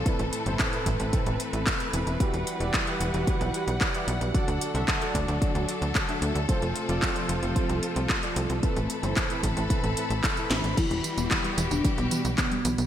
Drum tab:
CC |----------------|----------------|----------------|----------------|
HH |xxxxxxxxxxxxxxxx|xxxxxxxxxxxxxxxx|xxxxxxxxxxxxxxxx|xxxxxxxxxxxxxxxx|
TB |----------------|----------------|----------------|----------------|
CP |----x-------x---|----x-------x---|----x-------x---|----x-------x---|
SD |----------------|----------------|----------------|----------------|
BD |o---o-o-o---o---|o---o---o---o---|o---o-o-o---o---|o---o---o---o---|

CC |----------------|x---------------|
HH |xxxxxxxxxxxxxxxx|xxxxxxxxxxxxxxxx|
TB |----------------|x-xxx-xxx-xxx-xx|
CP |----x-------x---|----x-------x---|
SD |--------------o-|----------------|
BD |o---o-o-o---o---|o---o---o---o---|